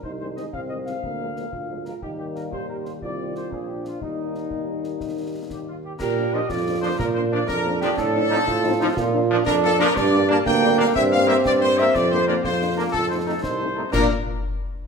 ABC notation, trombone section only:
X:1
M:6/8
L:1/16
Q:3/8=121
K:Eb
V:1 name="Trombone section"
z12 | z12 | z12 | z12 |
z12 | z12 | [K:Bb] z4 [F,D] z4 z [F,D] z | z4 [F,D] z4 z [F,D] z |
z4 [F,E] z4 z [F,E] z | z4 [F,D] z4 z [F,D] z | z4 [B,D] z4 z [B,D] z | z4 [B,C] z4 z [B,C] z |
z4 [B,D] z4 z [B,D] z | z4 [A,E] z4 z [A,E] z | [B,D]2 z8 z2 |]